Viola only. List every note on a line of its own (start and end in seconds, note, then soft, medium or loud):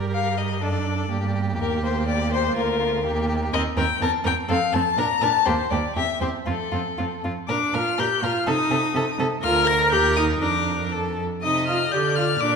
0.00 0.58 G4 medium
0.63 1.08 D4 medium
1.11 3.01 A#3 medium
3.05 3.50 A#3 medium
3.53 3.61 C4 medium
3.78 3.86 C4 medium
4.03 4.11 C4 medium
4.26 4.34 C4 medium
4.51 4.59 C4 medium
4.75 4.83 C4 medium
4.98 5.06 D4 medium
5.24 5.32 D4 medium
5.48 5.56 A#3 medium
5.72 5.80 A#3 medium
5.97 6.05 C4 medium
6.23 6.31 C4 soft
6.47 6.55 C4 medium
6.74 6.82 C4 medium
6.99 7.07 C4 soft
7.25 7.33 C4 soft
7.50 7.76 D4 medium
7.74 8.01 F4 medium
7.99 8.25 G4 medium
8.23 8.49 F4 medium
8.48 9.20 D#4 medium
9.44 9.66 F4 medium
9.68 9.94 A#4 loud
9.93 10.18 G4 medium
10.17 10.43 D#4 medium
10.42 10.92 D4 medium
11.43 11.66 D#4 medium
11.68 11.76 F4 medium
11.93 12.16 G4 medium
12.17 12.25 F4 medium
12.41 12.56 D4 medium